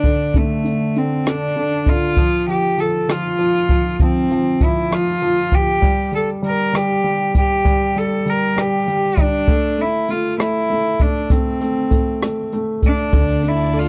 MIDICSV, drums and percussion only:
0, 0, Header, 1, 2, 480
1, 0, Start_track
1, 0, Key_signature, -1, "minor"
1, 0, Tempo, 609137
1, 269, Time_signature, 6, 3, 24, 8
1, 10941, End_track
2, 0, Start_track
2, 0, Title_t, "Drums"
2, 29, Note_on_c, 9, 36, 70
2, 29, Note_on_c, 9, 42, 58
2, 108, Note_off_c, 9, 36, 0
2, 108, Note_off_c, 9, 42, 0
2, 269, Note_on_c, 9, 36, 83
2, 270, Note_on_c, 9, 42, 67
2, 348, Note_off_c, 9, 36, 0
2, 349, Note_off_c, 9, 42, 0
2, 514, Note_on_c, 9, 42, 51
2, 593, Note_off_c, 9, 42, 0
2, 752, Note_on_c, 9, 42, 58
2, 831, Note_off_c, 9, 42, 0
2, 993, Note_on_c, 9, 42, 83
2, 1000, Note_on_c, 9, 37, 97
2, 1072, Note_off_c, 9, 42, 0
2, 1079, Note_off_c, 9, 37, 0
2, 1231, Note_on_c, 9, 42, 39
2, 1310, Note_off_c, 9, 42, 0
2, 1467, Note_on_c, 9, 42, 55
2, 1468, Note_on_c, 9, 36, 75
2, 1546, Note_off_c, 9, 42, 0
2, 1547, Note_off_c, 9, 36, 0
2, 1708, Note_on_c, 9, 36, 86
2, 1710, Note_on_c, 9, 42, 61
2, 1786, Note_off_c, 9, 36, 0
2, 1788, Note_off_c, 9, 42, 0
2, 1952, Note_on_c, 9, 42, 49
2, 2031, Note_off_c, 9, 42, 0
2, 2192, Note_on_c, 9, 42, 59
2, 2271, Note_off_c, 9, 42, 0
2, 2433, Note_on_c, 9, 42, 82
2, 2440, Note_on_c, 9, 37, 93
2, 2512, Note_off_c, 9, 42, 0
2, 2518, Note_off_c, 9, 37, 0
2, 2670, Note_on_c, 9, 42, 41
2, 2749, Note_off_c, 9, 42, 0
2, 2909, Note_on_c, 9, 36, 71
2, 2912, Note_on_c, 9, 42, 59
2, 2988, Note_off_c, 9, 36, 0
2, 2991, Note_off_c, 9, 42, 0
2, 3149, Note_on_c, 9, 36, 91
2, 3151, Note_on_c, 9, 42, 68
2, 3228, Note_off_c, 9, 36, 0
2, 3230, Note_off_c, 9, 42, 0
2, 3392, Note_on_c, 9, 42, 50
2, 3471, Note_off_c, 9, 42, 0
2, 3630, Note_on_c, 9, 36, 73
2, 3631, Note_on_c, 9, 42, 60
2, 3708, Note_off_c, 9, 36, 0
2, 3710, Note_off_c, 9, 42, 0
2, 3875, Note_on_c, 9, 42, 76
2, 3881, Note_on_c, 9, 37, 91
2, 3953, Note_off_c, 9, 42, 0
2, 3960, Note_off_c, 9, 37, 0
2, 4107, Note_on_c, 9, 42, 40
2, 4186, Note_off_c, 9, 42, 0
2, 4349, Note_on_c, 9, 36, 71
2, 4349, Note_on_c, 9, 42, 53
2, 4427, Note_off_c, 9, 42, 0
2, 4428, Note_off_c, 9, 36, 0
2, 4589, Note_on_c, 9, 36, 89
2, 4590, Note_on_c, 9, 42, 66
2, 4668, Note_off_c, 9, 36, 0
2, 4669, Note_off_c, 9, 42, 0
2, 4830, Note_on_c, 9, 42, 47
2, 4909, Note_off_c, 9, 42, 0
2, 5069, Note_on_c, 9, 42, 61
2, 5148, Note_off_c, 9, 42, 0
2, 5313, Note_on_c, 9, 42, 76
2, 5319, Note_on_c, 9, 37, 93
2, 5391, Note_off_c, 9, 42, 0
2, 5398, Note_off_c, 9, 37, 0
2, 5547, Note_on_c, 9, 42, 39
2, 5626, Note_off_c, 9, 42, 0
2, 5789, Note_on_c, 9, 42, 56
2, 5790, Note_on_c, 9, 36, 73
2, 5868, Note_off_c, 9, 42, 0
2, 5869, Note_off_c, 9, 36, 0
2, 6030, Note_on_c, 9, 36, 86
2, 6031, Note_on_c, 9, 42, 62
2, 6109, Note_off_c, 9, 36, 0
2, 6110, Note_off_c, 9, 42, 0
2, 6272, Note_on_c, 9, 42, 53
2, 6280, Note_on_c, 9, 37, 27
2, 6351, Note_off_c, 9, 42, 0
2, 6358, Note_off_c, 9, 37, 0
2, 6511, Note_on_c, 9, 42, 59
2, 6590, Note_off_c, 9, 42, 0
2, 6755, Note_on_c, 9, 42, 83
2, 6761, Note_on_c, 9, 37, 88
2, 6833, Note_off_c, 9, 42, 0
2, 6840, Note_off_c, 9, 37, 0
2, 6991, Note_on_c, 9, 42, 42
2, 7069, Note_off_c, 9, 42, 0
2, 7229, Note_on_c, 9, 36, 75
2, 7229, Note_on_c, 9, 42, 59
2, 7308, Note_off_c, 9, 36, 0
2, 7308, Note_off_c, 9, 42, 0
2, 7466, Note_on_c, 9, 42, 67
2, 7468, Note_on_c, 9, 36, 95
2, 7545, Note_off_c, 9, 42, 0
2, 7546, Note_off_c, 9, 36, 0
2, 7707, Note_on_c, 9, 42, 48
2, 7786, Note_off_c, 9, 42, 0
2, 7943, Note_on_c, 9, 42, 58
2, 8022, Note_off_c, 9, 42, 0
2, 8189, Note_on_c, 9, 42, 82
2, 8195, Note_on_c, 9, 37, 98
2, 8267, Note_off_c, 9, 42, 0
2, 8274, Note_off_c, 9, 37, 0
2, 8422, Note_on_c, 9, 42, 40
2, 8501, Note_off_c, 9, 42, 0
2, 8664, Note_on_c, 9, 42, 55
2, 8666, Note_on_c, 9, 36, 73
2, 8742, Note_off_c, 9, 42, 0
2, 8745, Note_off_c, 9, 36, 0
2, 8902, Note_on_c, 9, 42, 69
2, 8905, Note_on_c, 9, 36, 88
2, 8981, Note_off_c, 9, 42, 0
2, 8984, Note_off_c, 9, 36, 0
2, 9144, Note_on_c, 9, 42, 48
2, 9151, Note_on_c, 9, 37, 29
2, 9223, Note_off_c, 9, 42, 0
2, 9230, Note_off_c, 9, 37, 0
2, 9384, Note_on_c, 9, 42, 60
2, 9386, Note_on_c, 9, 36, 67
2, 9463, Note_off_c, 9, 42, 0
2, 9465, Note_off_c, 9, 36, 0
2, 9627, Note_on_c, 9, 42, 77
2, 9634, Note_on_c, 9, 37, 92
2, 9706, Note_off_c, 9, 42, 0
2, 9712, Note_off_c, 9, 37, 0
2, 9866, Note_on_c, 9, 42, 42
2, 9945, Note_off_c, 9, 42, 0
2, 10106, Note_on_c, 9, 42, 55
2, 10107, Note_on_c, 9, 36, 69
2, 10185, Note_off_c, 9, 42, 0
2, 10186, Note_off_c, 9, 36, 0
2, 10347, Note_on_c, 9, 36, 86
2, 10348, Note_on_c, 9, 42, 68
2, 10425, Note_off_c, 9, 36, 0
2, 10427, Note_off_c, 9, 42, 0
2, 10591, Note_on_c, 9, 42, 50
2, 10670, Note_off_c, 9, 42, 0
2, 10826, Note_on_c, 9, 42, 60
2, 10905, Note_off_c, 9, 42, 0
2, 10941, End_track
0, 0, End_of_file